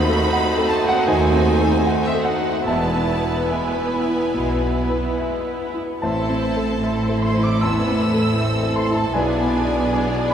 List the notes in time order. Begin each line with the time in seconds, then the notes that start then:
Already playing: D#2 A3 C4 D#4 F#4 C5 D#5 F#5 B5
0.09 A4
0.16 F#4
0.33 D#4 F#5
0.53 C4
0.58 A4
0.69 A5
0.73 A3
0.83 F#4
0.89 C4 F#5
1.08 D#2 D#3 D#4 G#5
1.32 C4 F#4
1.51 D#4
1.61 A4
1.71 C4
1.87 A3 F#5
2.05 C4 E5
2.15 A4
2.24 D#4 F#5
2.40 F#4
2.49 F#4
2.65 E1 E2 G#3 B3 E4 B4 E5 A5
2.69 E2 B3 E4
2.89 B3
2.95 B3
3.10 E4
3.20 B4
3.32 B3
3.48 B3 E4 B4 E5 G#5
3.52 G#3
3.73 B3 B4
3.93 E4
4.07 E4
4.15 B3
4.33 B1 B2 G#3
4.56 B3
4.62 B3
4.78 E4
4.90 B4
4.98 B3
5.18 G#3 E5
5.43 B3
5.47 B4
5.64 E4
5.74 E4
5.84 B3
6.01 A1 A2 C4 E4 A4 C5 E5 A5
6.05 C5
6.30 C4
6.57 A4
6.83 C4 E4 A4 C5 E5
7.09 A4
7.22 C6
7.36 E4
7.43 D6
7.61 E2 B3 A4 B4 A5 C6 E6
7.87 C4
8.00 A3
8.14 A4
8.37 C4 A4 E5
8.63 A4
8.76 C6
8.90 E4
8.95 A5
9.13 B1 B2 B3 D4 G#4 B4 D5 G#5
9.42 B3
9.56 G#4
9.65 D5
9.93 D4 G#5
10.18 D5
10.30 B5